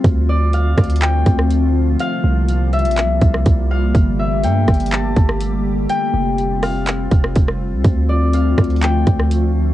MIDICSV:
0, 0, Header, 1, 5, 480
1, 0, Start_track
1, 0, Key_signature, -1, "minor"
1, 0, Tempo, 487805
1, 41, Time_signature, 4, 2, 24, 8
1, 9583, End_track
2, 0, Start_track
2, 0, Title_t, "Harp"
2, 0, Program_c, 0, 46
2, 0, Note_on_c, 0, 77, 84
2, 285, Note_on_c, 0, 74, 78
2, 481, Note_off_c, 0, 77, 0
2, 529, Note_on_c, 0, 77, 78
2, 1000, Note_on_c, 0, 79, 87
2, 1964, Note_off_c, 0, 77, 0
2, 1968, Note_on_c, 0, 77, 104
2, 2103, Note_off_c, 0, 74, 0
2, 2528, Note_off_c, 0, 79, 0
2, 2684, Note_on_c, 0, 76, 90
2, 2743, Note_off_c, 0, 77, 0
2, 3648, Note_on_c, 0, 77, 91
2, 3707, Note_off_c, 0, 76, 0
2, 4125, Note_on_c, 0, 76, 72
2, 4184, Note_off_c, 0, 77, 0
2, 4367, Note_on_c, 0, 79, 85
2, 4843, Note_on_c, 0, 81, 78
2, 5799, Note_off_c, 0, 79, 0
2, 5803, Note_on_c, 0, 79, 111
2, 5820, Note_off_c, 0, 76, 0
2, 6269, Note_off_c, 0, 81, 0
2, 6525, Note_on_c, 0, 77, 83
2, 7331, Note_off_c, 0, 79, 0
2, 7964, Note_on_c, 0, 74, 78
2, 8162, Note_off_c, 0, 77, 0
2, 8207, Note_on_c, 0, 77, 77
2, 8681, Note_on_c, 0, 79, 89
2, 9583, Note_off_c, 0, 74, 0
2, 9583, Note_off_c, 0, 77, 0
2, 9583, Note_off_c, 0, 79, 0
2, 9583, End_track
3, 0, Start_track
3, 0, Title_t, "Ambient pad"
3, 0, Program_c, 1, 92
3, 43, Note_on_c, 1, 53, 74
3, 43, Note_on_c, 1, 57, 72
3, 43, Note_on_c, 1, 60, 70
3, 44, Note_on_c, 1, 50, 82
3, 44, Note_on_c, 1, 65, 88
3, 1943, Note_off_c, 1, 50, 0
3, 1943, Note_off_c, 1, 57, 0
3, 1943, Note_off_c, 1, 60, 0
3, 1962, Note_on_c, 1, 48, 76
3, 1962, Note_on_c, 1, 55, 75
3, 1962, Note_on_c, 1, 58, 73
3, 3844, Note_off_c, 1, 53, 0
3, 3844, Note_off_c, 1, 65, 0
3, 3862, Note_off_c, 1, 48, 0
3, 3881, Note_on_c, 1, 50, 81
3, 3881, Note_on_c, 1, 57, 72
3, 3881, Note_on_c, 1, 67, 84
3, 5763, Note_off_c, 1, 58, 0
3, 5782, Note_off_c, 1, 50, 0
3, 5782, Note_off_c, 1, 57, 0
3, 5782, Note_off_c, 1, 67, 0
3, 5801, Note_on_c, 1, 65, 93
3, 5802, Note_on_c, 1, 60, 71
3, 7682, Note_off_c, 1, 55, 0
3, 7723, Note_on_c, 1, 50, 80
3, 7723, Note_on_c, 1, 53, 76
3, 7723, Note_on_c, 1, 57, 74
3, 9583, Note_off_c, 1, 50, 0
3, 9583, Note_off_c, 1, 53, 0
3, 9583, Note_off_c, 1, 57, 0
3, 9583, Note_off_c, 1, 60, 0
3, 9583, Note_off_c, 1, 65, 0
3, 9583, End_track
4, 0, Start_track
4, 0, Title_t, "808-style bass"
4, 0, Program_c, 2, 38
4, 42, Note_on_c, 2, 38, 111
4, 733, Note_off_c, 2, 38, 0
4, 763, Note_on_c, 2, 38, 105
4, 1223, Note_off_c, 2, 38, 0
4, 1242, Note_on_c, 2, 38, 104
4, 1933, Note_off_c, 2, 38, 0
4, 2202, Note_on_c, 2, 36, 103
4, 2801, Note_on_c, 2, 34, 99
4, 2816, Note_off_c, 2, 36, 0
4, 2983, Note_on_c, 2, 36, 101
4, 2997, Note_off_c, 2, 34, 0
4, 3153, Note_off_c, 2, 36, 0
4, 3162, Note_on_c, 2, 36, 102
4, 3392, Note_off_c, 2, 36, 0
4, 3403, Note_on_c, 2, 36, 109
4, 3863, Note_off_c, 2, 36, 0
4, 3882, Note_on_c, 2, 31, 110
4, 4361, Note_on_c, 2, 43, 96
4, 4376, Note_off_c, 2, 31, 0
4, 4589, Note_off_c, 2, 43, 0
4, 4603, Note_on_c, 2, 31, 107
4, 5063, Note_off_c, 2, 31, 0
4, 5082, Note_on_c, 2, 31, 98
4, 5773, Note_off_c, 2, 31, 0
4, 6042, Note_on_c, 2, 29, 106
4, 6963, Note_off_c, 2, 29, 0
4, 7002, Note_on_c, 2, 29, 96
4, 7232, Note_off_c, 2, 29, 0
4, 7243, Note_on_c, 2, 29, 108
4, 7602, Note_on_c, 2, 36, 100
4, 7617, Note_off_c, 2, 29, 0
4, 7716, Note_off_c, 2, 36, 0
4, 7723, Note_on_c, 2, 38, 110
4, 8413, Note_off_c, 2, 38, 0
4, 8443, Note_on_c, 2, 38, 104
4, 8903, Note_off_c, 2, 38, 0
4, 8922, Note_on_c, 2, 38, 103
4, 9583, Note_off_c, 2, 38, 0
4, 9583, End_track
5, 0, Start_track
5, 0, Title_t, "Drums"
5, 42, Note_on_c, 9, 42, 80
5, 43, Note_on_c, 9, 36, 122
5, 141, Note_off_c, 9, 36, 0
5, 141, Note_off_c, 9, 42, 0
5, 523, Note_on_c, 9, 42, 80
5, 622, Note_off_c, 9, 42, 0
5, 763, Note_on_c, 9, 36, 88
5, 763, Note_on_c, 9, 42, 44
5, 764, Note_on_c, 9, 37, 99
5, 823, Note_off_c, 9, 42, 0
5, 823, Note_on_c, 9, 42, 54
5, 862, Note_off_c, 9, 36, 0
5, 862, Note_off_c, 9, 37, 0
5, 882, Note_off_c, 9, 42, 0
5, 882, Note_on_c, 9, 42, 68
5, 942, Note_off_c, 9, 42, 0
5, 942, Note_on_c, 9, 42, 80
5, 1002, Note_off_c, 9, 42, 0
5, 1002, Note_on_c, 9, 42, 86
5, 1005, Note_on_c, 9, 39, 111
5, 1101, Note_off_c, 9, 42, 0
5, 1103, Note_off_c, 9, 39, 0
5, 1241, Note_on_c, 9, 42, 73
5, 1242, Note_on_c, 9, 36, 100
5, 1339, Note_off_c, 9, 42, 0
5, 1341, Note_off_c, 9, 36, 0
5, 1366, Note_on_c, 9, 37, 106
5, 1464, Note_off_c, 9, 37, 0
5, 1481, Note_on_c, 9, 42, 92
5, 1579, Note_off_c, 9, 42, 0
5, 1962, Note_on_c, 9, 42, 75
5, 2060, Note_off_c, 9, 42, 0
5, 2442, Note_on_c, 9, 42, 84
5, 2541, Note_off_c, 9, 42, 0
5, 2682, Note_on_c, 9, 42, 45
5, 2742, Note_off_c, 9, 42, 0
5, 2742, Note_on_c, 9, 42, 55
5, 2802, Note_off_c, 9, 42, 0
5, 2802, Note_on_c, 9, 42, 65
5, 2862, Note_off_c, 9, 42, 0
5, 2862, Note_on_c, 9, 42, 80
5, 2923, Note_off_c, 9, 42, 0
5, 2923, Note_on_c, 9, 42, 87
5, 2925, Note_on_c, 9, 39, 102
5, 3022, Note_off_c, 9, 42, 0
5, 3024, Note_off_c, 9, 39, 0
5, 3161, Note_on_c, 9, 42, 71
5, 3162, Note_on_c, 9, 36, 100
5, 3259, Note_off_c, 9, 42, 0
5, 3261, Note_off_c, 9, 36, 0
5, 3286, Note_on_c, 9, 37, 105
5, 3384, Note_off_c, 9, 37, 0
5, 3401, Note_on_c, 9, 42, 90
5, 3403, Note_on_c, 9, 36, 97
5, 3499, Note_off_c, 9, 42, 0
5, 3502, Note_off_c, 9, 36, 0
5, 3882, Note_on_c, 9, 36, 121
5, 3883, Note_on_c, 9, 42, 79
5, 3981, Note_off_c, 9, 36, 0
5, 3981, Note_off_c, 9, 42, 0
5, 4363, Note_on_c, 9, 42, 84
5, 4462, Note_off_c, 9, 42, 0
5, 4602, Note_on_c, 9, 42, 47
5, 4603, Note_on_c, 9, 36, 91
5, 4604, Note_on_c, 9, 37, 98
5, 4662, Note_off_c, 9, 42, 0
5, 4662, Note_on_c, 9, 42, 54
5, 4702, Note_off_c, 9, 36, 0
5, 4702, Note_off_c, 9, 37, 0
5, 4723, Note_off_c, 9, 42, 0
5, 4723, Note_on_c, 9, 42, 70
5, 4783, Note_off_c, 9, 42, 0
5, 4783, Note_on_c, 9, 42, 80
5, 4843, Note_off_c, 9, 42, 0
5, 4843, Note_on_c, 9, 42, 89
5, 4846, Note_on_c, 9, 39, 110
5, 4942, Note_off_c, 9, 42, 0
5, 4944, Note_off_c, 9, 39, 0
5, 5081, Note_on_c, 9, 42, 70
5, 5082, Note_on_c, 9, 36, 106
5, 5180, Note_off_c, 9, 42, 0
5, 5181, Note_off_c, 9, 36, 0
5, 5206, Note_on_c, 9, 37, 107
5, 5304, Note_off_c, 9, 37, 0
5, 5320, Note_on_c, 9, 42, 93
5, 5418, Note_off_c, 9, 42, 0
5, 5802, Note_on_c, 9, 42, 75
5, 5901, Note_off_c, 9, 42, 0
5, 6283, Note_on_c, 9, 42, 84
5, 6381, Note_off_c, 9, 42, 0
5, 6522, Note_on_c, 9, 46, 58
5, 6523, Note_on_c, 9, 37, 101
5, 6621, Note_off_c, 9, 46, 0
5, 6622, Note_off_c, 9, 37, 0
5, 6762, Note_on_c, 9, 42, 89
5, 6765, Note_on_c, 9, 39, 109
5, 6861, Note_off_c, 9, 42, 0
5, 6863, Note_off_c, 9, 39, 0
5, 7001, Note_on_c, 9, 42, 72
5, 7002, Note_on_c, 9, 36, 105
5, 7099, Note_off_c, 9, 42, 0
5, 7101, Note_off_c, 9, 36, 0
5, 7125, Note_on_c, 9, 37, 105
5, 7224, Note_off_c, 9, 37, 0
5, 7240, Note_on_c, 9, 42, 89
5, 7243, Note_on_c, 9, 36, 96
5, 7338, Note_off_c, 9, 42, 0
5, 7342, Note_off_c, 9, 36, 0
5, 7365, Note_on_c, 9, 37, 96
5, 7464, Note_off_c, 9, 37, 0
5, 7722, Note_on_c, 9, 36, 120
5, 7722, Note_on_c, 9, 42, 75
5, 7821, Note_off_c, 9, 36, 0
5, 7821, Note_off_c, 9, 42, 0
5, 8203, Note_on_c, 9, 42, 83
5, 8301, Note_off_c, 9, 42, 0
5, 8442, Note_on_c, 9, 42, 45
5, 8443, Note_on_c, 9, 36, 97
5, 8444, Note_on_c, 9, 37, 97
5, 8502, Note_off_c, 9, 42, 0
5, 8502, Note_on_c, 9, 42, 55
5, 8541, Note_off_c, 9, 36, 0
5, 8542, Note_off_c, 9, 37, 0
5, 8562, Note_off_c, 9, 42, 0
5, 8562, Note_on_c, 9, 42, 67
5, 8622, Note_off_c, 9, 42, 0
5, 8622, Note_on_c, 9, 42, 75
5, 8683, Note_off_c, 9, 42, 0
5, 8683, Note_on_c, 9, 42, 86
5, 8685, Note_on_c, 9, 39, 105
5, 8781, Note_off_c, 9, 42, 0
5, 8783, Note_off_c, 9, 39, 0
5, 8921, Note_on_c, 9, 42, 67
5, 8922, Note_on_c, 9, 36, 101
5, 9019, Note_off_c, 9, 42, 0
5, 9020, Note_off_c, 9, 36, 0
5, 9045, Note_on_c, 9, 37, 106
5, 9144, Note_off_c, 9, 37, 0
5, 9159, Note_on_c, 9, 42, 97
5, 9258, Note_off_c, 9, 42, 0
5, 9583, End_track
0, 0, End_of_file